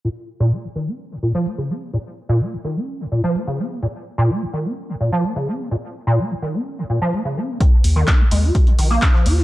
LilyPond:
<<
  \new Staff \with { instrumentName = "Acid bass" } { \clef bass \time 4/4 \key bes \minor \tempo 4 = 127 bes,16 r8 bes,16 bes16 bes,16 ees16 des'8 bes,16 bes,16 f16 bes16 des16 des'16 bes16 | bes,16 r8 bes,16 bes16 bes,16 ees16 des'8 bes,16 bes,16 f16 bes16 des16 des'16 bes16 | bes,16 r8 bes,16 bes16 bes,16 ees16 des'8 bes,16 bes,16 f16 bes16 des16 des'16 bes16 | bes,16 r8 bes,16 bes16 bes,16 ees16 des'8 bes,16 bes,16 f16 bes16 des16 des'16 bes16 |
ees16 r8 ees16 ees'16 ees16 aes16 ges'8 ees16 ees16 bes16 ees'16 f16 ges'16 ees'16 | }
  \new Staff \with { instrumentName = "Sub bass" } { \clef bass \time 4/4 \key bes \minor r1 | r1 | r1 | r1 |
r8 ees,8 r8 ees,8 r8 bes,,8 r8 ees,8 | }
  \new DrumStaff \with { instrumentName = "Drums" } \drummode { \time 4/4 r4 r4 r4 r4 | r4 r4 r4 r4 | r4 r4 r4 r4 | r4 r4 r4 r4 |
<hh bd>8 <hh hho>8 <hc hh bd sn>8 hho8 <hh bd>16 hh16 <hh hho>8 <hc hh bd sn>16 sn16 <hh hho>16 sn16 | }
>>